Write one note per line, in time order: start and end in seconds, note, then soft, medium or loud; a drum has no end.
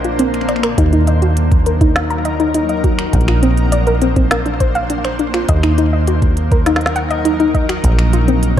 0.00 0.75 A#1 medium
0.00 0.74 A#3 medium
0.00 0.76 D4 medium
0.00 0.76 C5 medium
0.04 0.10 F4 medium
0.04 closed hi-hat soft
0.19 0.32 C4 loud
0.19 closed hi-hat loud
0.34 finger snap soft
0.34 closed hi-hat soft
0.41 finger snap soft
0.49 0.57 D5 loud
0.49 finger snap soft
0.49 closed hi-hat soft
0.56 finger snap soft
0.63 0.69 A#4 loud
0.63 finger snap soft
0.63 closed hi-hat soft
0.78 3.10 D#2 medium
0.78 3.11 F#3 medium
0.78 3.11 D#4 medium
0.78 0.87 D#4 loud
0.78 3.11 A#4 medium
0.78 kick loud
0.78 closed hi-hat medium
0.93 1.02 D#4 loud
0.93 closed hi-hat soft
1.07 1.16 D#5 medium
1.07 closed hi-hat medium
1.22 1.27 F#4 medium
1.22 closed hi-hat soft
1.37 closed hi-hat medium
1.52 kick loud
1.52 closed hi-hat soft
1.66 1.72 A#4 medium
1.66 closed hi-hat medium
1.81 1.94 D#4 loud
1.81 kick loud
1.81 closed hi-hat soft
1.96 snare loud
2.10 2.19 A#5 loud
2.10 closed hi-hat soft
2.25 2.30 D#5 loud
2.25 closed hi-hat medium
2.40 2.49 D#4 loud
2.40 closed hi-hat soft
2.54 2.63 D#4 loud
2.54 closed hi-hat medium
2.69 2.78 D#5 medium
2.69 closed hi-hat soft
2.84 2.89 F#4 medium
2.84 kick medium
2.84 closed hi-hat soft
2.99 finger snap soft
2.99 closed hi-hat soft
3.13 5.46 A#1 medium
3.13 5.46 A#3 medium
3.13 5.46 D4 medium
3.13 5.46 C5 medium
3.13 kick loud
3.13 closed hi-hat medium
3.21 closed hi-hat soft
3.28 3.33 F4 medium
3.28 finger snap soft
3.43 3.56 C4 loud
3.43 closed hi-hat medium
3.57 closed hi-hat soft
3.72 3.81 D5 loud
3.72 closed hi-hat medium
3.87 3.92 A#4 loud
3.87 closed hi-hat soft
4.02 4.10 C4 loud
4.02 closed hi-hat medium
4.16 4.25 C4 loud
4.16 kick loud
4.16 closed hi-hat soft
4.31 4.40 A#4 medium
4.31 snare loud
4.31 closed hi-hat medium
4.46 4.51 D4 medium
4.46 closed hi-hat soft
4.60 4.66 C5 medium
4.60 kick medium
4.60 closed hi-hat medium
4.75 4.80 F5 loud
4.75 closed hi-hat soft
4.90 5.03 D4 medium
4.90 closed hi-hat medium
5.04 5.13 C5 medium
5.04 finger snap soft
5.04 closed hi-hat soft
5.19 5.25 D4 medium
5.19 closed hi-hat soft
5.34 5.43 F4 medium
5.34 finger snap soft
5.34 closed hi-hat soft
5.49 7.81 D#2 medium
5.49 7.82 F#3 medium
5.49 7.82 D#4 medium
5.49 7.82 A#4 medium
5.49 5.54 D#5 loud
5.49 kick loud
5.49 closed hi-hat medium
5.63 5.72 D#4 loud
5.63 finger snap soft
5.63 closed hi-hat soft
5.78 5.87 D#4 loud
5.78 closed hi-hat medium
5.93 6.02 D#5 medium
6.07 6.13 F#4 medium
6.07 closed hi-hat medium
6.22 kick loud
6.22 closed hi-hat soft
6.37 closed hi-hat medium
6.52 6.57 A#4 medium
6.52 kick loud
6.52 closed hi-hat soft
6.66 6.79 D#4 loud
6.66 snare medium
6.66 closed hi-hat medium
6.76 snare medium
6.81 closed hi-hat soft
6.86 snare medium
6.96 7.04 F#5 loud
6.96 closed hi-hat medium
7.10 7.16 D#5 loud
7.10 closed hi-hat soft
7.25 7.34 D#4 loud
7.25 closed hi-hat medium
7.40 7.49 D#4 loud
7.40 closed hi-hat soft
7.54 7.63 D#5 medium
7.54 kick medium
7.54 closed hi-hat soft
7.69 7.74 F#4 medium
7.69 finger snap soft
7.69 closed hi-hat soft
7.84 8.60 A#1 medium
7.84 8.60 A#3 medium
7.84 8.60 D4 medium
7.84 8.60 C5 medium
7.84 kick medium
7.84 closed hi-hat medium
7.99 finger snap soft
7.99 closed hi-hat soft
8.13 8.18 F4 medium
8.13 closed hi-hat medium
8.28 8.41 C4 loud
8.28 closed hi-hat soft
8.43 closed hi-hat medium